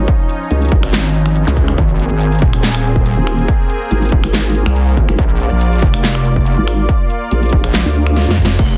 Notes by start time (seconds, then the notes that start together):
Already playing: F3 C#4 D#4
0.08 kick, closed hi-hat
0.29 closed hi-hat
0.51 C#2, closed hi-hat
0.62 closed hi-hat
0.65 closed hi-hat
0.69 G#1, kick, closed hi-hat
0.83 G#1, finger snap
0.93 snare, clap, closed hi-hat
1.14 closed hi-hat
1.26 finger snap
1.36 closed hi-hat
1.47 C#2, zap
1.57 kick, closed hi-hat
1.68 finger snap, closed hi-hat
1.78 G#1 A#3 C4 G#4, kick, closed hi-hat
1.99 closed hi-hat
2.11 G#1
2.21 closed hi-hat
2.32 closed hi-hat
2.35 closed hi-hat
2.39 kick, closed hi-hat
2.53 D#1, finger snap
2.63 snare, clap, closed hi-hat
2.75 finger snap
2.85 closed hi-hat
2.96 kick
3.06 closed hi-hat
3.17 D#1
3.27 finger snap, closed hi-hat
3.38 closed hi-hat
3.48 kick, closed hi-hat
3.70 closed hi-hat
3.91 G#1, closed hi-hat
4.02 closed hi-hat
4.05 closed hi-hat
4.09 D#1, kick, closed hi-hat
4.24 G#1, finger snap
4.34 snare, clap, closed hi-hat
4.55 closed hi-hat
4.66 C2, finger snap
4.76 closed hi-hat
4.97 kick, closed hi-hat
5.09 G#1, finger snap, closed hi-hat
5.19 A#1 F4 D5, kick, closed hi-hat
5.40 closed hi-hat
5.51 A#1
5.61 closed hi-hat
5.73 closed hi-hat
5.75 closed hi-hat
5.79 kick, closed hi-hat
5.94 F1, finger snap
6.04 snare, clap, closed hi-hat
6.15 finger snap
6.25 closed hi-hat
6.36 kick
6.46 closed hi-hat
6.58 G#1
6.68 finger snap, closed hi-hat
6.79 closed hi-hat
6.89 kick, closed hi-hat
7.10 closed hi-hat
7.31 A#1, closed hi-hat
7.43 closed hi-hat
7.46 closed hi-hat
7.49 F1, kick, closed hi-hat
7.64 A#1, finger snap
7.74 snare, clap, closed hi-hat
7.85 D2
7.95 closed hi-hat
8.07 finger snap
8.16 snare, closed hi-hat
8.28 F2, snare
8.38 kick, closed hi-hat
8.45 snare
8.49 closed hi-hat
8.59 F1 F3 C4 G#4, kick, closed hi-hat, crash
8.69 G#4